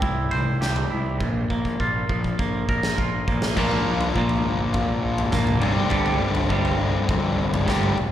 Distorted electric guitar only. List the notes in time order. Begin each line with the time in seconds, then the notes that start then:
3.56 A#2 F3 A#3 D4 F4
3.60 A#4
5.61 G2 D3 G3 C4 D4 G4
7.66 G2 D3 G3 C4 D4
7.70 G4